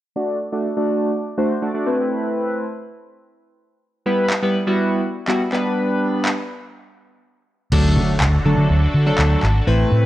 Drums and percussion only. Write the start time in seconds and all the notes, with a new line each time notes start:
4.30 clap
5.28 clap
5.53 clap
6.25 clap
7.72 crash
8.21 clap
9.18 clap
9.43 clap